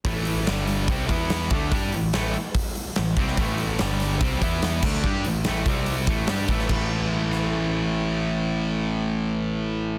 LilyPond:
<<
  \new Staff \with { instrumentName = "Distorted electric guitar" } { \clef bass \time 4/4 \key g \lydian \tempo 4 = 144 <a, e a>4 <g, d g>4 <c g c'>8 <e b e'>4 <d a d'>8 | <g d' g'>8 <a, e>8 <a, e a>8 r4. <a, e>8 <c g c'>8 | <a, e a>4 <g, d g>4 <c g c'>8 <e b e'>4 <d a d'>8 | <g d' g'>8 <a, e>8 <a, e a>8 <c g c'>4 <a, e a>8 <g d' g'>8 <a, e a>8 |
<a, e a>1~ | <a, e a>1 | }
  \new Staff \with { instrumentName = "Overdriven electric guitar" } { \clef bass \time 4/4 \key g \lydian <a, e a>4 <g, d g>4 <c g c'>8 <e b e'>4 <d a d'>8 | <g d' g'>8 <a, e>8 <a, e a>8 r4. <a, e>8 <c g c'>8 | <a, e a>4 <g, d g>4 <c g c'>8 <e b e'>4 <d a d'>8 | <g d' g'>8 <a, e>8 <a, e a>8 <c g c'>4 <a, e a>8 <g d' g'>8 <a, e a>8 |
<a, e a>1~ | <a, e a>1 | }
  \new Staff \with { instrumentName = "Picked electric bass" } { \clef bass \time 4/4 \key g \lydian a,,4 g,,4 c,8 e,4 d,8 | g,8 a,,8 a,,8 r4. a,,8 c,8 | a,,4 g,,4 c,8 e,4 d,8 | g,8 a,,8 a,,8 c,4 a,,8 g,8 a,,8 |
a,,1~ | a,,1 | }
  \new DrumStaff \with { instrumentName = "Drums" } \drummode { \time 4/4 <hho bd>8 hho8 <hho sn>8 <hho sn>8 <hho bd>8 <hho bd>8 <hho sn>8 <hho bd>8 | <hho bd>8 hho8 <hho sn>8 hho8 <hho bd>8 hho8 <hho sn>8 <hho bd>16 sn16 | <hho bd>8 hho8 <hho sn>8 <hho sn>8 <hho bd>8 <hho bd>8 <hho sn>8 <cymc bd>16 sn16 | bd8 hho8 <hho sn>8 <hho bd>8 hho8 <hho bd>8 <hho sn>8 <hho bd>16 sn16 |
<cymc bd>4 r8 ss8 r4 r4 | r4 r4 r4 r4 | }
>>